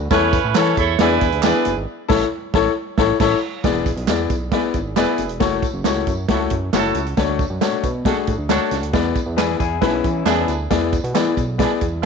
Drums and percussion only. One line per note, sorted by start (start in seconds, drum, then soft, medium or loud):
0.10 kick loud
0.10 snare loud
0.10 closed hi-hat medium
0.10 tambourine medium
0.33 kick loud
0.33 closed hi-hat medium
0.33 tambourine medium
0.55 snare loud
0.55 clap medium
0.55 closed hi-hat loud
0.55 tambourine loud
0.77 kick medium
0.77 closed hi-hat medium
0.77 tambourine soft
0.99 snare loud
0.99 closed hi-hat loud
0.99 tambourine soft
1.21 kick medium
1.21 closed hi-hat medium
1.21 tambourine soft
1.32 closed hi-hat soft
1.43 snare loud
1.43 clap loud
1.43 closed hi-hat medium
1.43 tambourine loud
1.65 closed hi-hat medium
1.65 tambourine soft
2.10 kick loud
2.10 snare loud
2.10 crash medium
2.54 kick loud
2.54 snare loud
2.98 kick loud
2.98 snare loud
3.20 kick medium
3.20 snare loud
3.20 crash medium
3.64 kick loud
3.64 snare loud
3.64 closed hi-hat medium
3.64 tambourine medium
3.86 kick loud
3.86 closed hi-hat medium
3.86 tambourine medium
3.97 closed hi-hat medium
4.07 snare loud
4.07 clap medium
4.07 closed hi-hat medium
4.07 tambourine medium
4.30 kick medium
4.30 closed hi-hat medium
4.30 tambourine medium
4.52 kick loud
4.52 snare loud
4.52 closed hi-hat loud
4.74 kick medium
4.74 closed hi-hat medium
4.74 tambourine soft
4.96 snare loud
4.96 clap medium
4.96 closed hi-hat medium
4.96 tambourine loud
5.18 closed hi-hat medium
5.18 tambourine soft
5.29 closed hi-hat soft
5.40 kick medium
5.40 snare loud
5.40 closed hi-hat medium
5.40 tambourine medium
5.63 kick loud
5.63 closed hi-hat medium
5.63 tambourine medium
5.84 snare loud
5.84 clap medium
5.84 closed hi-hat medium
5.84 tambourine loud
6.07 kick medium
6.07 closed hi-hat medium
6.07 tambourine soft
6.28 kick loud
6.28 snare loud
6.28 closed hi-hat loud
6.50 kick medium
6.50 closed hi-hat medium
6.73 snare loud
6.73 clap medium
6.73 closed hi-hat medium
6.73 tambourine medium
6.94 closed hi-hat medium
6.94 tambourine soft
7.06 closed hi-hat soft
7.17 kick loud
7.17 snare loud
7.17 closed hi-hat medium
7.17 tambourine medium
7.39 kick medium
7.39 closed hi-hat medium
7.39 tambourine medium
7.61 snare medium
7.61 clap medium
7.61 closed hi-hat medium
7.61 tambourine medium
7.84 kick medium
7.84 closed hi-hat medium
7.84 tambourine soft
8.05 kick loud
8.05 snare loud
8.05 closed hi-hat loud
8.05 tambourine soft
8.27 kick medium
8.27 closed hi-hat medium
8.27 tambourine soft
8.49 snare loud
8.49 clap medium
8.49 closed hi-hat medium
8.49 tambourine medium
8.71 snare soft
8.71 closed hi-hat medium
8.71 tambourine soft
8.83 closed hi-hat soft
8.93 kick loud
8.93 snare loud
8.93 closed hi-hat medium
8.93 tambourine medium
9.15 kick loud
9.15 closed hi-hat medium
9.15 tambourine medium
9.38 snare loud
9.38 clap loud
9.38 closed hi-hat medium
9.38 tambourine medium
9.60 kick medium
9.60 closed hi-hat medium
9.60 tambourine medium
9.82 kick loud
9.82 snare loud
9.82 closed hi-hat loud
10.04 kick medium
10.04 closed hi-hat medium
10.04 tambourine soft
10.26 snare loud
10.26 clap medium
10.26 closed hi-hat medium
10.26 tambourine medium
10.48 closed hi-hat medium
10.48 tambourine medium
10.71 kick medium
10.71 snare loud
10.71 closed hi-hat medium
10.71 tambourine medium
10.93 kick medium
10.93 closed hi-hat medium
10.93 tambourine medium
11.04 closed hi-hat medium
11.15 snare loud
11.15 clap loud
11.15 closed hi-hat medium
11.15 tambourine medium
11.37 kick medium
11.37 closed hi-hat medium
11.37 tambourine soft
11.59 kick medium
11.59 snare loud
11.59 closed hi-hat loud
11.59 tambourine soft
11.81 kick medium
11.81 closed hi-hat medium
11.81 tambourine soft